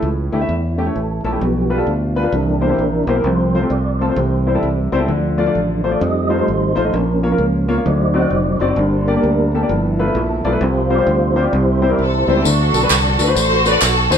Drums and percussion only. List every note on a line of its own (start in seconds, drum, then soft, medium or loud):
12.45 tambourine medium
12.74 tambourine medium
12.90 clap medium
12.90 tambourine medium
13.19 tambourine medium
13.36 tambourine medium
13.66 tambourine medium
13.81 clap medium
13.81 tambourine loud
14.12 tambourine medium